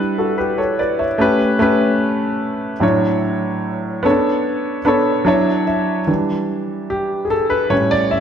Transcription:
0, 0, Header, 1, 2, 480
1, 0, Start_track
1, 0, Tempo, 814111
1, 1667, Time_signature, 4, 2, 24, 8
1, 4835, End_track
2, 0, Start_track
2, 0, Title_t, "Grand piano"
2, 0, Program_c, 0, 0
2, 0, Control_c, 0, 64, 127
2, 0, Note_on_c, 0, 55, 72
2, 0, Note_on_c, 0, 62, 66
2, 0, Note_on_c, 0, 64, 65
2, 0, Note_on_c, 0, 71, 81
2, 107, Note_on_c, 0, 69, 58
2, 111, Note_on_c, 0, 66, 48
2, 221, Note_off_c, 0, 69, 0
2, 223, Note_off_c, 0, 66, 0
2, 223, Note_off_c, 0, 71, 0
2, 223, Note_on_c, 0, 71, 60
2, 226, Note_on_c, 0, 67, 53
2, 339, Note_off_c, 0, 71, 0
2, 340, Note_off_c, 0, 67, 0
2, 342, Note_on_c, 0, 73, 62
2, 345, Note_on_c, 0, 69, 53
2, 459, Note_off_c, 0, 73, 0
2, 460, Note_off_c, 0, 69, 0
2, 467, Note_on_c, 0, 74, 62
2, 469, Note_on_c, 0, 71, 52
2, 581, Note_off_c, 0, 74, 0
2, 583, Note_off_c, 0, 71, 0
2, 583, Note_on_c, 0, 76, 58
2, 586, Note_on_c, 0, 73, 53
2, 615, Note_off_c, 0, 55, 0
2, 618, Note_off_c, 0, 62, 0
2, 621, Note_off_c, 0, 64, 0
2, 697, Note_on_c, 0, 57, 77
2, 702, Note_on_c, 0, 61, 68
2, 708, Note_on_c, 0, 67, 69
2, 716, Control_c, 0, 64, 0
2, 716, Note_on_c, 0, 71, 89
2, 802, Control_c, 0, 64, 127
2, 813, Note_off_c, 0, 76, 0
2, 815, Note_off_c, 0, 73, 0
2, 920, Note_off_c, 0, 57, 0
2, 923, Note_off_c, 0, 61, 0
2, 926, Note_off_c, 0, 67, 0
2, 930, Note_off_c, 0, 71, 0
2, 938, Note_on_c, 0, 57, 81
2, 942, Note_on_c, 0, 61, 70
2, 948, Note_on_c, 0, 67, 65
2, 955, Note_on_c, 0, 71, 88
2, 1597, Note_off_c, 0, 57, 0
2, 1599, Note_off_c, 0, 61, 0
2, 1602, Note_off_c, 0, 67, 0
2, 1606, Note_off_c, 0, 71, 0
2, 1651, Note_on_c, 0, 45, 68
2, 1657, Note_on_c, 0, 54, 70
2, 1661, Note_on_c, 0, 62, 65
2, 1667, Note_on_c, 0, 64, 61
2, 1669, Note_on_c, 0, 73, 78
2, 1675, Control_c, 0, 64, 0
2, 1779, Control_c, 0, 64, 127
2, 2374, Note_on_c, 0, 59, 81
2, 2380, Note_off_c, 0, 45, 0
2, 2380, Note_on_c, 0, 61, 57
2, 2382, Note_off_c, 0, 54, 0
2, 2384, Note_off_c, 0, 62, 0
2, 2384, Note_off_c, 0, 73, 0
2, 2386, Note_on_c, 0, 69, 74
2, 2387, Note_off_c, 0, 64, 0
2, 2393, Note_on_c, 0, 73, 83
2, 2394, Control_c, 0, 64, 0
2, 2418, Note_on_c, 0, 62, 71
2, 2422, Note_off_c, 0, 61, 0
2, 2516, Control_c, 0, 64, 127
2, 2817, Note_off_c, 0, 59, 0
2, 2824, Note_off_c, 0, 69, 0
2, 2827, Note_off_c, 0, 73, 0
2, 2840, Note_off_c, 0, 62, 0
2, 2859, Note_on_c, 0, 59, 74
2, 2863, Note_on_c, 0, 62, 69
2, 2868, Note_on_c, 0, 83, 61
2, 2872, Note_on_c, 0, 69, 70
2, 2877, Note_on_c, 0, 73, 84
2, 3091, Note_off_c, 0, 83, 0
2, 3093, Note_off_c, 0, 62, 0
2, 3093, Note_on_c, 0, 54, 84
2, 3102, Note_on_c, 0, 62, 75
2, 3103, Note_off_c, 0, 59, 0
2, 3104, Note_on_c, 0, 81, 66
2, 3105, Note_off_c, 0, 73, 0
2, 3108, Note_on_c, 0, 64, 68
2, 3110, Note_off_c, 0, 69, 0
2, 3114, Control_c, 0, 64, 0
2, 3114, Note_on_c, 0, 73, 87
2, 3224, Control_c, 0, 64, 127
2, 3329, Note_off_c, 0, 81, 0
2, 3344, Note_on_c, 0, 76, 72
2, 3537, Note_off_c, 0, 54, 0
2, 3542, Note_off_c, 0, 62, 0
2, 3545, Note_off_c, 0, 64, 0
2, 3547, Note_off_c, 0, 73, 0
2, 3569, Note_off_c, 0, 76, 0
2, 3580, Note_on_c, 0, 52, 49
2, 3584, Note_on_c, 0, 55, 43
2, 3588, Note_on_c, 0, 62, 50
2, 3596, Control_c, 0, 64, 0
2, 3697, Control_c, 0, 64, 127
2, 4068, Note_on_c, 0, 67, 70
2, 4275, Note_on_c, 0, 68, 50
2, 4281, Note_off_c, 0, 52, 0
2, 4283, Note_off_c, 0, 55, 0
2, 4285, Note_off_c, 0, 62, 0
2, 4285, Note_off_c, 0, 67, 0
2, 4306, Note_on_c, 0, 69, 78
2, 4307, Note_off_c, 0, 68, 0
2, 4336, Note_off_c, 0, 69, 0
2, 4421, Note_on_c, 0, 71, 82
2, 4539, Note_on_c, 0, 45, 48
2, 4541, Note_on_c, 0, 55, 42
2, 4541, Note_on_c, 0, 73, 89
2, 4545, Note_on_c, 0, 61, 59
2, 4549, Note_off_c, 0, 71, 0
2, 4558, Control_c, 0, 64, 0
2, 4648, Control_c, 0, 64, 127
2, 4664, Note_on_c, 0, 74, 91
2, 4669, Note_off_c, 0, 73, 0
2, 4782, Note_on_c, 0, 76, 85
2, 4791, Note_off_c, 0, 74, 0
2, 4835, Note_off_c, 0, 45, 0
2, 4835, Note_off_c, 0, 55, 0
2, 4835, Note_off_c, 0, 61, 0
2, 4835, Note_off_c, 0, 76, 0
2, 4835, End_track
0, 0, End_of_file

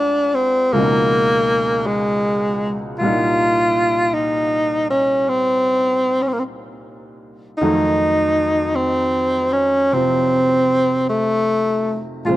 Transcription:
0, 0, Header, 1, 3, 480
1, 0, Start_track
1, 0, Tempo, 1145038
1, 1262, Time_signature, 4, 2, 24, 8
1, 2705, Tempo, 1162791
1, 5146, End_track
2, 0, Start_track
2, 0, Title_t, "Tenor saxophone"
2, 0, Program_c, 0, 66
2, 0, Note_on_c, 0, 62, 69
2, 145, Note_on_c, 0, 60, 75
2, 152, Note_off_c, 0, 62, 0
2, 305, Note_on_c, 0, 58, 79
2, 311, Note_off_c, 0, 60, 0
2, 782, Note_on_c, 0, 56, 71
2, 788, Note_off_c, 0, 58, 0
2, 1180, Note_off_c, 0, 56, 0
2, 1252, Note_on_c, 0, 65, 82
2, 1734, Note_on_c, 0, 63, 78
2, 1741, Note_off_c, 0, 65, 0
2, 2053, Note_off_c, 0, 63, 0
2, 2056, Note_on_c, 0, 61, 74
2, 2217, Note_on_c, 0, 60, 80
2, 2224, Note_off_c, 0, 61, 0
2, 2609, Note_on_c, 0, 61, 61
2, 2615, Note_off_c, 0, 60, 0
2, 2632, Note_on_c, 0, 60, 59
2, 2638, Note_off_c, 0, 61, 0
2, 2655, Note_on_c, 0, 58, 60
2, 2662, Note_off_c, 0, 60, 0
2, 2681, Note_on_c, 0, 60, 60
2, 2688, Note_off_c, 0, 58, 0
2, 2692, Note_off_c, 0, 60, 0
2, 3170, Note_on_c, 0, 63, 77
2, 3656, Note_on_c, 0, 60, 69
2, 3662, Note_off_c, 0, 63, 0
2, 3975, Note_on_c, 0, 61, 67
2, 3981, Note_off_c, 0, 60, 0
2, 4142, Note_on_c, 0, 60, 77
2, 4148, Note_off_c, 0, 61, 0
2, 4619, Note_off_c, 0, 60, 0
2, 4621, Note_on_c, 0, 57, 71
2, 5007, Note_off_c, 0, 57, 0
2, 5103, Note_on_c, 0, 65, 69
2, 5146, Note_off_c, 0, 65, 0
2, 5146, End_track
3, 0, Start_track
3, 0, Title_t, "Upright piano"
3, 0, Program_c, 1, 0
3, 0, Control_c, 1, 64, 127
3, 0, Note_on_c, 1, 38, 35
3, 0, Note_on_c, 1, 50, 33
3, 0, Note_on_c, 1, 56, 32
3, 0, Note_on_c, 1, 60, 34
3, 0, Note_on_c, 1, 65, 43
3, 305, Note_off_c, 1, 38, 0
3, 305, Note_off_c, 1, 50, 0
3, 305, Note_off_c, 1, 56, 0
3, 305, Note_on_c, 1, 37, 47
3, 307, Note_off_c, 1, 60, 0
3, 308, Note_off_c, 1, 65, 0
3, 310, Control_c, 1, 64, 0
3, 311, Note_on_c, 1, 49, 41
3, 315, Note_on_c, 1, 53, 44
3, 320, Note_on_c, 1, 47, 44
3, 328, Note_on_c, 1, 63, 46
3, 383, Control_c, 1, 64, 127
3, 1260, Note_on_c, 1, 36, 45
3, 1262, Note_off_c, 1, 37, 0
3, 1263, Note_on_c, 1, 46, 40
3, 1265, Note_off_c, 1, 49, 0
3, 1267, Note_off_c, 1, 53, 0
3, 1267, Control_c, 1, 64, 0
3, 1269, Note_on_c, 1, 55, 41
3, 1270, Note_off_c, 1, 47, 0
3, 1274, Note_off_c, 1, 63, 0
3, 1275, Note_on_c, 1, 58, 44
3, 1281, Note_on_c, 1, 63, 51
3, 1352, Control_c, 1, 64, 127
3, 3182, Note_off_c, 1, 36, 0
3, 3183, Note_on_c, 1, 54, 41
3, 3184, Note_off_c, 1, 46, 0
3, 3184, Note_on_c, 1, 41, 46
3, 3184, Note_on_c, 1, 51, 41
3, 3185, Note_off_c, 1, 63, 0
3, 3187, Note_off_c, 1, 55, 0
3, 3188, Control_c, 1, 64, 0
3, 3188, Note_on_c, 1, 57, 40
3, 3189, Note_off_c, 1, 58, 0
3, 3191, Note_on_c, 1, 63, 47
3, 3259, Control_c, 1, 64, 127
3, 4139, Note_on_c, 1, 48, 37
3, 4143, Note_on_c, 1, 53, 32
3, 4148, Note_on_c, 1, 60, 40
3, 5096, Note_off_c, 1, 53, 0
3, 5097, Note_on_c, 1, 46, 37
3, 5103, Note_on_c, 1, 53, 38
3, 5104, Note_off_c, 1, 41, 0
3, 5104, Note_off_c, 1, 48, 0
3, 5104, Note_off_c, 1, 54, 0
3, 5105, Note_off_c, 1, 51, 0
3, 5105, Note_on_c, 1, 56, 40
3, 5106, Note_off_c, 1, 57, 0
3, 5108, Note_off_c, 1, 63, 0
3, 5109, Note_off_c, 1, 60, 0
3, 5110, Control_c, 1, 64, 0
3, 5116, Note_on_c, 1, 72, 39
3, 5119, Note_on_c, 1, 49, 47
3, 5146, Note_off_c, 1, 46, 0
3, 5146, Note_off_c, 1, 49, 0
3, 5146, Note_off_c, 1, 53, 0
3, 5146, Note_off_c, 1, 56, 0
3, 5146, Note_off_c, 1, 72, 0
3, 5146, End_track
0, 0, End_of_file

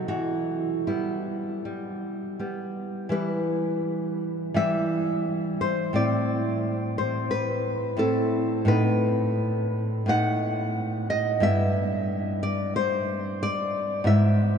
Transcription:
0, 0, Header, 1, 2, 480
1, 0, Start_track
1, 0, Key_signature, 1, "minor"
1, 0, Tempo, 780234
1, 60, Time_signature, 4, 2, 24, 8
1, 1021, Tempo, 722022
1, 3421, Tempo, 681044
1, 6301, Tempo, 737101
1, 6781, Tempo, 684932
1, 7261, Tempo, 657895
1, 10035, End_track
2, 0, Start_track
2, 0, Title_t, "Nylon-string guitar"
2, 0, Program_c, 0, 24
2, 50, Note_on_c, 0, 52, 45
2, 51, Note_on_c, 0, 66, 67
2, 518, Note_off_c, 0, 66, 0
2, 523, Note_off_c, 0, 52, 0
2, 536, Note_on_c, 0, 55, 34
2, 536, Note_on_c, 0, 64, 47
2, 541, Note_on_c, 0, 59, 34
2, 1008, Note_off_c, 0, 55, 0
2, 1016, Note_on_c, 0, 55, 37
2, 1242, Note_off_c, 0, 59, 0
2, 1502, Note_off_c, 0, 55, 0
2, 1510, Note_on_c, 0, 55, 35
2, 1514, Note_on_c, 0, 59, 35
2, 1721, Note_off_c, 0, 64, 0
2, 1963, Note_off_c, 0, 55, 0
2, 1965, Note_off_c, 0, 59, 0
2, 1973, Note_on_c, 0, 52, 48
2, 1979, Note_on_c, 0, 55, 40
2, 1988, Note_on_c, 0, 64, 39
2, 1990, Note_on_c, 0, 71, 73
2, 2921, Note_off_c, 0, 52, 0
2, 2924, Note_off_c, 0, 55, 0
2, 2928, Note_off_c, 0, 64, 0
2, 2929, Note_off_c, 0, 71, 0
2, 2938, Note_on_c, 0, 52, 49
2, 2945, Note_on_c, 0, 55, 42
2, 2950, Note_on_c, 0, 64, 39
2, 2952, Note_on_c, 0, 76, 79
2, 3634, Note_off_c, 0, 76, 0
2, 3660, Note_on_c, 0, 72, 69
2, 3868, Note_off_c, 0, 52, 0
2, 3871, Note_off_c, 0, 55, 0
2, 3874, Note_off_c, 0, 64, 0
2, 3886, Note_on_c, 0, 45, 49
2, 3893, Note_on_c, 0, 60, 42
2, 3894, Note_off_c, 0, 72, 0
2, 3900, Note_on_c, 0, 64, 42
2, 3904, Note_on_c, 0, 74, 68
2, 4599, Note_off_c, 0, 74, 0
2, 4627, Note_on_c, 0, 72, 71
2, 4854, Note_off_c, 0, 72, 0
2, 4857, Note_on_c, 0, 71, 79
2, 5304, Note_off_c, 0, 45, 0
2, 5308, Note_off_c, 0, 60, 0
2, 5311, Note_off_c, 0, 64, 0
2, 5318, Note_off_c, 0, 71, 0
2, 5322, Note_on_c, 0, 45, 52
2, 5327, Note_on_c, 0, 60, 40
2, 5334, Note_on_c, 0, 64, 42
2, 5339, Note_on_c, 0, 69, 74
2, 5795, Note_off_c, 0, 45, 0
2, 5802, Note_off_c, 0, 60, 0
2, 5803, Note_off_c, 0, 69, 0
2, 5803, Note_on_c, 0, 45, 57
2, 5805, Note_off_c, 0, 64, 0
2, 5812, Note_on_c, 0, 59, 45
2, 5817, Note_on_c, 0, 63, 47
2, 5825, Note_on_c, 0, 71, 87
2, 6746, Note_off_c, 0, 45, 0
2, 6750, Note_off_c, 0, 59, 0
2, 6752, Note_off_c, 0, 63, 0
2, 6756, Note_off_c, 0, 71, 0
2, 6759, Note_on_c, 0, 45, 58
2, 6769, Note_on_c, 0, 59, 49
2, 6774, Note_on_c, 0, 63, 49
2, 6780, Note_on_c, 0, 78, 95
2, 7471, Note_off_c, 0, 78, 0
2, 7496, Note_on_c, 0, 75, 85
2, 7697, Note_off_c, 0, 45, 0
2, 7703, Note_off_c, 0, 59, 0
2, 7706, Note_off_c, 0, 63, 0
2, 7717, Note_on_c, 0, 43, 58
2, 7726, Note_on_c, 0, 59, 51
2, 7727, Note_off_c, 0, 75, 0
2, 7730, Note_on_c, 0, 64, 48
2, 7737, Note_on_c, 0, 76, 102
2, 8439, Note_off_c, 0, 76, 0
2, 8465, Note_on_c, 0, 74, 80
2, 8699, Note_off_c, 0, 74, 0
2, 8706, Note_on_c, 0, 72, 91
2, 9170, Note_off_c, 0, 72, 0
2, 9193, Note_on_c, 0, 74, 95
2, 9624, Note_off_c, 0, 43, 0
2, 9628, Note_off_c, 0, 59, 0
2, 9630, Note_off_c, 0, 64, 0
2, 9642, Note_on_c, 0, 44, 60
2, 9646, Note_off_c, 0, 74, 0
2, 9648, Note_on_c, 0, 59, 50
2, 9658, Note_on_c, 0, 64, 49
2, 9662, Note_on_c, 0, 76, 83
2, 10035, Note_off_c, 0, 44, 0
2, 10035, Note_off_c, 0, 59, 0
2, 10035, Note_off_c, 0, 64, 0
2, 10035, Note_off_c, 0, 76, 0
2, 10035, End_track
0, 0, End_of_file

